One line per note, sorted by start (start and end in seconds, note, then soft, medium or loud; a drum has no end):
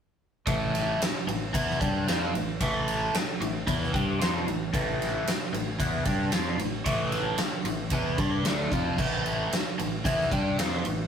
0.47 0.97 A1 medium
0.47 0.99 A2 medium
0.47 1.00 E3 loud
0.47 1.00 A3 loud
0.47 kick loud
0.47 ride medium
0.75 snare soft
0.75 ride medium
1.00 muted fingered electric bass stroke soft
1.00 muted overdriven electric guitar stroke medium
1.00 snare loud
1.00 ride loud
1.27 1.52 A1 medium
1.27 1.49 A2 medium
1.27 1.49 E3 medium
1.27 ride medium
1.53 1.79 E2 loud
1.53 1.79 E3 medium
1.53 1.79 B3 medium
1.53 1.80 E4 loud
1.53 kick loud
1.53 ride loud
1.70 snare soft
1.80 2.05 G2 loud
1.80 2.06 G3 medium
1.80 2.06 D4 medium
1.80 2.06 G4 medium
1.80 kick loud
1.80 ride medium
2.07 2.32 F2 loud
2.07 2.33 F3 medium
2.07 2.33 C4 medium
2.07 2.33 F4 loud
2.07 snare loud
2.07 ride loud
2.34 2.58 A1 medium
2.34 2.55 A2 medium
2.34 2.55 E3 medium
2.34 ride medium
2.60 3.10 A1 medium
2.60 3.13 A2 medium
2.60 3.13 E3 loud
2.60 3.13 A3 loud
2.60 kick loud
2.60 ride loud
2.88 ride medium
3.14 muted fingered electric bass stroke soft
3.14 muted overdriven electric guitar stroke medium
3.14 snare loud
3.14 ride loud
3.41 3.65 A1 medium
3.41 3.62 A2 medium
3.41 3.62 E3 medium
3.41 ride medium
3.67 3.91 E2 loud
3.67 3.93 E3 medium
3.67 3.93 B3 medium
3.67 3.94 E4 loud
3.67 kick loud
3.67 ride medium
3.83 snare soft
3.94 4.18 G2 medium
3.94 4.19 G3 medium
3.94 4.20 D4 medium
3.94 4.20 G4 loud
3.94 kick loud
3.94 ride medium
4.19 4.45 F2 loud
4.19 4.45 F3 loud
4.19 4.46 C4 loud
4.19 4.46 F4 loud
4.19 snare loud
4.19 ride medium
4.46 4.71 A1 medium
4.46 4.67 A2 medium
4.46 4.68 E3 medium
4.46 ride medium
4.73 5.23 A1 medium
4.73 5.25 A2 medium
4.73 5.26 E3 loud
4.73 5.26 A3 loud
4.73 kick loud
4.73 ride medium
5.02 snare soft
5.02 ride medium
5.26 muted overdriven electric guitar stroke medium
5.26 muted fingered electric bass stroke soft
5.26 snare loud
5.26 ride loud
5.53 5.77 A1 medium
5.53 5.74 A2 medium
5.53 5.74 E3 medium
5.53 ride medium
5.79 6.04 E2 loud
5.79 6.05 E3 medium
5.79 6.04 B3 medium
5.79 6.05 E4 medium
5.79 kick loud
5.79 ride loud
6.05 6.31 G2 medium
6.05 6.31 G3 medium
6.05 6.32 D4 loud
6.05 6.32 G4 loud
6.05 kick loud
6.05 ride medium
6.32 6.57 F2 medium
6.32 6.58 F3 medium
6.32 6.58 C4 loud
6.32 6.58 F4 loud
6.32 snare loud
6.32 ride loud
6.58 6.83 A1 medium
6.58 6.80 A2 medium
6.58 6.80 E3 medium
6.58 ride medium
6.85 7.35 A1 medium
6.85 7.37 A2 medium
6.85 7.38 E3 medium
6.85 7.38 A3 loud
6.85 kick loud
6.85 ride loud
7.12 snare soft
7.12 ride medium
7.38 muted fingered electric bass stroke soft
7.38 muted overdriven electric guitar stroke medium
7.38 snare loud
7.38 ride loud
7.64 7.89 A1 medium
7.64 7.87 A2 medium
7.64 7.87 E3 medium
7.64 ride medium
7.90 8.16 E2 loud
7.90 8.18 E3 medium
7.90 8.18 B3 medium
7.90 8.18 E4 medium
7.90 kick loud
7.90 ride medium
8.18 8.42 G2 loud
8.18 8.44 G3 medium
8.18 8.45 D4 medium
8.18 8.45 G4 loud
8.18 kick loud
8.18 ride medium
8.43 8.69 D2 medium
8.43 8.71 D3 medium
8.43 8.72 A3 medium
8.43 8.72 D4 loud
8.43 snare loud
8.43 ride medium
8.71 8.97 F2 medium
8.71 8.97 F3 medium
8.71 8.98 C4 medium
8.71 8.98 F4 loud
8.71 kick loud
8.71 ride medium
8.97 9.48 A1 medium
8.97 9.50 A2 medium
8.97 9.51 E3 medium
8.97 9.51 A3 loud
8.97 kick loud
8.97 crash medium
9.26 ride medium
9.51 muted overdriven electric guitar stroke medium
9.51 muted fingered electric bass stroke soft
9.51 snare loud
9.51 ride medium
9.79 10.04 A1 medium
9.79 10.00 A2 medium
9.79 10.00 E3 medium
9.79 ride medium
10.04 10.30 E2 loud
10.04 10.30 E3 medium
10.04 10.31 B3 medium
10.04 10.31 E4 loud
10.04 kick loud
10.04 ride loud
10.21 snare soft
10.31 10.56 G2 medium
10.31 10.57 G3 medium
10.31 10.57 D4 medium
10.31 10.58 G4 loud
10.31 kick loud
10.31 ride medium
10.57 10.83 F2 loud
10.57 10.83 F3 medium
10.57 10.84 C4 medium
10.57 10.84 F4 loud
10.57 snare loud
10.57 ride loud
10.85 11.07 A1 medium
10.85 11.06 A2 medium
10.85 11.06 E3 medium
10.85 ride medium